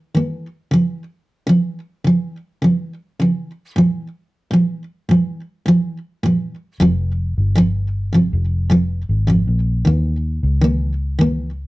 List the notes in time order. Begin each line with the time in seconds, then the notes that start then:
0.15 D#3 A#3
0.71 C#3 F3
1.47 C#3 F3
2.04 C#3 F3
2.62 C#3 F3
3.20 C#3 F3
3.76 A#2 F3
4.51 A#2 F3
5.09 A#2 F3
5.66 A#2 F3
6.23 A#2 F3
6.80 F1 F2 C3 F3
7.38 G1
7.55 F2 C3 F3
8.13 F2 C3 F3
8.33 F1
8.70 F2 C3 F3
9.09 G#1
9.27 F2 C3 F3
9.47 A#1
9.85 D#2 D#3 A#3
10.43 C#2
10.61 D#3 A#3
11.19 D#3 A#3